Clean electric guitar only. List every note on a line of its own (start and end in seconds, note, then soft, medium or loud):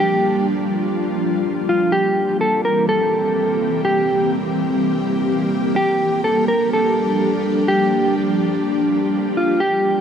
0.00 0.45 G4 loud
1.69 1.92 F4 medium
1.92 2.38 G4 loud
2.41 2.64 A4 medium
2.65 2.88 A#4 medium
2.89 3.81 A4 medium
3.85 4.30 G4 loud
5.76 6.21 G4 loud
6.24 6.47 A4 medium
6.48 6.71 A#4 medium
6.73 7.65 A4 medium
7.68 8.14 G4 loud
9.37 9.60 F4 medium
9.60 10.01 G4 loud